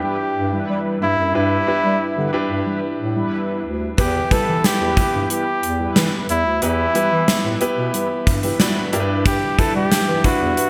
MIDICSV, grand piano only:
0, 0, Header, 1, 2, 480
1, 0, Start_track
1, 0, Key_signature, 1, "major"
1, 0, Tempo, 659341
1, 979, Time_signature, 4, 2, 24, 8
1, 7789, End_track
2, 0, Start_track
2, 0, Title_t, "Grand piano"
2, 0, Program_c, 0, 0
2, 0, Control_c, 0, 64, 127
2, 0, Note_on_c, 0, 43, 66
2, 0, Note_on_c, 0, 62, 68
2, 0, Note_on_c, 0, 64, 62
2, 0, Note_on_c, 0, 67, 60
2, 0, Note_on_c, 0, 71, 70
2, 493, Note_off_c, 0, 62, 0
2, 494, Note_off_c, 0, 64, 0
2, 496, Note_off_c, 0, 67, 0
2, 497, Note_off_c, 0, 71, 0
2, 741, Note_off_c, 0, 43, 0
2, 741, Note_on_c, 0, 43, 59
2, 975, Note_on_c, 0, 62, 69
2, 978, Note_on_c, 0, 64, 63
2, 981, Note_on_c, 0, 67, 62
2, 983, Note_on_c, 0, 71, 79
2, 1156, Note_off_c, 0, 62, 0
2, 1157, Note_off_c, 0, 64, 0
2, 1159, Note_off_c, 0, 67, 0
2, 1160, Note_off_c, 0, 71, 0
2, 1215, Note_on_c, 0, 62, 67
2, 1218, Note_on_c, 0, 64, 63
2, 1221, Note_on_c, 0, 67, 59
2, 1224, Note_on_c, 0, 71, 77
2, 1431, Note_off_c, 0, 43, 0
2, 1575, Note_off_c, 0, 62, 0
2, 1576, Note_off_c, 0, 64, 0
2, 1578, Note_off_c, 0, 67, 0
2, 1579, Note_off_c, 0, 71, 0
2, 1695, Note_on_c, 0, 62, 78
2, 1698, Note_on_c, 0, 64, 72
2, 1701, Note_on_c, 0, 67, 72
2, 1703, Note_on_c, 0, 71, 83
2, 2412, Note_off_c, 0, 62, 0
2, 2414, Note_off_c, 0, 64, 0
2, 2415, Note_off_c, 0, 67, 0
2, 2416, Note_off_c, 0, 71, 0
2, 2895, Note_on_c, 0, 59, 70
2, 2898, Note_on_c, 0, 64, 63
2, 2900, Note_on_c, 0, 52, 59
2, 2901, Note_on_c, 0, 67, 64
2, 2903, Note_on_c, 0, 71, 75
2, 2909, Control_c, 0, 64, 0
2, 3052, Control_c, 0, 64, 127
2, 3076, Note_off_c, 0, 59, 0
2, 3077, Note_off_c, 0, 64, 0
2, 3079, Note_off_c, 0, 67, 0
2, 3080, Note_off_c, 0, 71, 0
2, 3134, Note_on_c, 0, 59, 65
2, 3137, Note_on_c, 0, 64, 61
2, 3140, Note_on_c, 0, 67, 61
2, 3143, Note_on_c, 0, 71, 73
2, 3494, Note_off_c, 0, 59, 0
2, 3496, Note_off_c, 0, 64, 0
2, 3497, Note_off_c, 0, 67, 0
2, 3498, Note_off_c, 0, 71, 0
2, 3590, Note_off_c, 0, 52, 0
2, 3613, Note_on_c, 0, 59, 68
2, 3617, Note_on_c, 0, 64, 59
2, 3620, Note_on_c, 0, 67, 58
2, 3623, Note_on_c, 0, 71, 69
2, 4331, Note_off_c, 0, 59, 0
2, 4333, Note_off_c, 0, 64, 0
2, 4334, Note_off_c, 0, 67, 0
2, 4336, Note_off_c, 0, 71, 0
2, 4816, Note_on_c, 0, 59, 66
2, 4819, Note_on_c, 0, 64, 63
2, 4820, Note_on_c, 0, 52, 63
2, 4821, Note_on_c, 0, 67, 65
2, 4824, Note_on_c, 0, 71, 80
2, 4996, Note_off_c, 0, 59, 0
2, 4998, Note_off_c, 0, 64, 0
2, 4999, Note_off_c, 0, 67, 0
2, 5000, Note_off_c, 0, 71, 0
2, 5055, Note_on_c, 0, 59, 65
2, 5057, Note_on_c, 0, 64, 59
2, 5060, Note_on_c, 0, 67, 60
2, 5063, Note_on_c, 0, 71, 78
2, 5414, Note_off_c, 0, 59, 0
2, 5416, Note_off_c, 0, 64, 0
2, 5417, Note_off_c, 0, 67, 0
2, 5419, Note_off_c, 0, 71, 0
2, 5511, Note_off_c, 0, 52, 0
2, 5536, Note_on_c, 0, 59, 80
2, 5539, Note_on_c, 0, 64, 75
2, 5542, Note_on_c, 0, 67, 76
2, 5545, Note_on_c, 0, 71, 90
2, 6019, Note_off_c, 0, 64, 0
2, 6021, Note_off_c, 0, 67, 0
2, 6022, Note_off_c, 0, 71, 0
2, 6140, Note_on_c, 0, 76, 58
2, 6144, Note_on_c, 0, 67, 50
2, 6253, Note_off_c, 0, 59, 0
2, 6253, Note_off_c, 0, 76, 0
2, 6256, Note_off_c, 0, 67, 0
2, 6259, Note_on_c, 0, 74, 71
2, 6264, Note_on_c, 0, 66, 59
2, 6373, Note_off_c, 0, 74, 0
2, 6376, Note_off_c, 0, 66, 0
2, 6379, Note_on_c, 0, 71, 57
2, 6384, Note_on_c, 0, 62, 49
2, 6485, Note_off_c, 0, 62, 0
2, 6496, Note_on_c, 0, 62, 84
2, 6499, Note_on_c, 0, 64, 76
2, 6500, Note_on_c, 0, 43, 72
2, 6502, Note_on_c, 0, 67, 81
2, 6505, Note_on_c, 0, 70, 78
2, 6509, Control_c, 0, 64, 0
2, 6541, Note_off_c, 0, 71, 0
2, 6549, Note_off_c, 0, 70, 0
2, 6552, Note_on_c, 0, 71, 92
2, 6641, Control_c, 0, 64, 127
2, 6881, Note_off_c, 0, 62, 0
2, 6883, Note_off_c, 0, 64, 0
2, 6884, Note_off_c, 0, 67, 0
2, 6910, Note_off_c, 0, 71, 0
2, 6974, Note_on_c, 0, 62, 67
2, 6977, Note_on_c, 0, 64, 64
2, 6980, Note_on_c, 0, 67, 61
2, 6983, Note_on_c, 0, 71, 74
2, 7190, Note_off_c, 0, 43, 0
2, 7334, Note_off_c, 0, 62, 0
2, 7336, Note_off_c, 0, 64, 0
2, 7337, Note_off_c, 0, 67, 0
2, 7339, Note_off_c, 0, 71, 0
2, 7454, Note_on_c, 0, 62, 72
2, 7458, Note_on_c, 0, 64, 65
2, 7460, Note_on_c, 0, 55, 59
2, 7463, Note_on_c, 0, 71, 78
2, 7789, Note_off_c, 0, 55, 0
2, 7789, Note_off_c, 0, 62, 0
2, 7789, Note_off_c, 0, 64, 0
2, 7789, Note_off_c, 0, 71, 0
2, 7789, End_track
0, 0, End_of_file